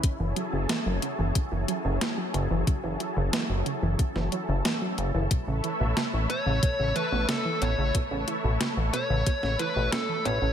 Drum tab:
HH |x-x-x-x-x-x-x-x-|x-x-x-x-x-x-x-x-|x-x-x-x-x-x-x-x-|x-x-x-x-x-x-x-x-|
SD |----o-------o---|----o----o--o---|----o-------o---|----o----o--o---|
BD |o-------o-------|o-------o-------|o-------o-------|o-------o-------|